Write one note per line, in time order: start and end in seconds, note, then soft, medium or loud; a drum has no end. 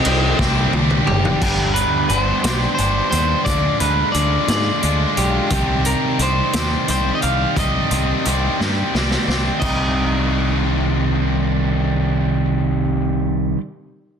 0.00 1.03 D#5 medium
0.04 0.33 C2 medium
0.04 0.39 D#3 medium
0.04 0.39 G3 medium
0.04 0.38 C4 medium
0.04 0.37 G4 loud
0.04 ride medium
0.38 0.66 C2 loud
0.38 1.08 C3 medium
0.38 0.72 D#3 medium
0.38 0.73 G3 medium
0.38 0.74 C4 medium
0.38 0.75 G4 loud
0.38 kick medium
0.38 snare medium
0.73 1.00 C2 medium
0.73 1.39 D#3 medium
0.73 1.39 G3 medium
0.73 1.40 C4 medium
0.73 1.40 G4 medium
0.73 high tom medium
0.90 mid tom medium
1.07 1.35 F#1 medium
1.07 1.71 G4 medium
1.07 mid tom loud
1.25 floor tom medium
1.41 1.84 G1 medium
1.41 2.09 G2 medium
1.41 2.09 D3 medium
1.41 1.76 G3 medium
1.41 1.75 B3 medium
1.41 1.75 D4 medium
1.41 1.73 G4 medium
1.41 kick loud
1.41 crash medium
1.74 2.08 G3 soft
1.74 2.09 B3 medium
1.74 2.11 D4 medium
1.74 2.11 G4 medium
1.74 2.08 B4 medium
1.74 closed hi-hat medium
2.09 2.31 G1 medium
2.09 2.45 G3 medium
2.09 2.44 B3 medium
2.09 2.43 D4 medium
2.09 2.42 G4 medium
2.09 2.20 B4 medium
2.09 closed hi-hat medium
2.20 2.73 C5 medium
2.43 2.65 B1 medium
2.43 2.76 G3 medium
2.43 2.77 B3 medium
2.43 2.79 D4 medium
2.43 2.79 G4 medium
2.43 snare medium
2.43 closed hi-hat medium
2.75 3.13 G3 medium
2.75 3.13 B3 medium
2.75 3.09 C5 medium
2.75 closed hi-hat medium
2.79 3.00 G1 medium
2.79 3.11 D4 medium
2.79 3.10 G4 medium
3.10 3.33 D#2 medium
3.10 3.45 B3 medium
3.10 3.44 D4 medium
3.10 3.43 G4 medium
3.10 3.44 C5 medium
3.10 closed hi-hat medium
3.15 3.45 G3 medium
3.45 3.67 D2 medium
3.45 4.12 D3 medium
3.45 3.82 G#3 medium
3.45 3.81 D4 medium
3.45 3.80 D5 medium
3.45 kick loud
3.45 closed hi-hat medium
3.49 3.79 F4 medium
3.80 4.02 D2 medium
3.80 4.13 G#3 medium
3.80 4.15 D4 medium
3.80 4.16 F4 medium
3.80 4.11 B4 medium
3.80 closed hi-hat medium
4.12 4.36 D2 medium
4.12 4.81 D3 medium
4.12 4.49 G#3 medium
4.12 4.48 D5 medium
4.12 closed hi-hat medium
4.16 4.48 D4 medium
4.16 4.46 F4 medium
4.47 4.69 G#2 medium
4.47 4.82 G#3 medium
4.47 4.83 D4 medium
4.47 4.84 F4 medium
4.47 5.19 D5 medium
4.47 snare medium
4.47 closed hi-hat medium
4.82 5.04 D2 medium
4.82 5.48 D3 medium
4.82 5.19 G#3 medium
4.82 5.18 D4 medium
4.82 5.16 F4 medium
4.82 closed hi-hat medium
5.17 5.39 B1 medium
5.17 5.50 G#3 medium
5.17 5.50 D4 medium
5.17 5.49 F4 medium
5.17 5.81 G4 medium
5.17 closed hi-hat medium
5.50 5.93 C2 medium
5.50 7.55 C3 medium
5.50 6.18 D#3 medium
5.50 5.88 G3 medium
5.50 5.87 C4 medium
5.50 5.85 G4 loud
5.50 kick loud
5.50 closed hi-hat medium
5.85 6.20 G3 medium
5.85 6.21 C4 medium
5.85 6.22 G4 medium
5.85 6.17 A#4 medium
5.85 closed hi-hat medium
6.19 6.40 C2 medium
6.19 6.86 D#3 medium
6.19 6.56 G3 medium
6.19 6.55 C4 medium
6.19 6.53 G4 medium
6.19 6.89 C5 medium
6.19 closed hi-hat medium
6.53 6.75 D#2 medium
6.53 6.88 G3 medium
6.53 6.89 C4 medium
6.53 6.90 G4 medium
6.53 snare medium
6.53 closed hi-hat medium
6.88 7.10 C2 medium
6.88 7.56 D#3 medium
6.88 7.24 G3 medium
6.88 7.24 C4 medium
6.88 7.22 G4 medium
6.88 7.14 C5 medium
6.88 closed hi-hat medium
7.15 7.22 D#5 medium
7.22 7.44 C2 medium
7.22 7.56 G3 medium
7.22 7.57 C4 medium
7.22 7.58 G4 medium
7.22 7.54 F5 medium
7.22 closed hi-hat soft
7.56 7.78 C2 medium
7.56 8.24 C3 medium
7.56 8.24 D#3 medium
7.56 7.93 G3 medium
7.56 7.91 C4 medium
7.56 7.90 G4 medium
7.56 8.91 D#5 medium
7.56 kick loud
7.56 closed hi-hat medium
7.91 8.12 C2 medium
7.91 8.24 G3 soft
7.91 8.26 C4 medium
7.91 8.26 G4 medium
7.91 closed hi-hat medium
8.25 8.47 C2 medium
8.25 8.92 D#3 medium
8.25 8.62 G3 medium
8.25 8.60 C4 medium
8.25 8.59 G4 medium
8.25 closed hi-hat medium
8.60 8.81 G2 medium
8.60 8.93 G3 soft
8.60 8.95 C4 soft
8.60 8.95 G4 medium
8.60 snare soft
8.93 9.15 C2 medium
8.93 9.60 D#3 medium
8.93 9.28 G3 medium
8.93 9.27 C4 medium
8.93 9.25 G4 medium
8.93 snare medium
9.11 snare medium
9.26 9.49 C2 medium
9.26 9.61 G3 soft
9.26 9.60 C4 medium
9.26 9.59 G4 medium
9.26 snare medium
9.60 13.54 C2 medium
9.60 13.56 C3 medium
9.60 13.58 D#3 medium
9.60 13.58 G3 medium
9.60 13.52 D#5 medium
9.60 kick medium
9.60 crash medium
9.64 13.60 C4 medium
9.64 13.60 G4 medium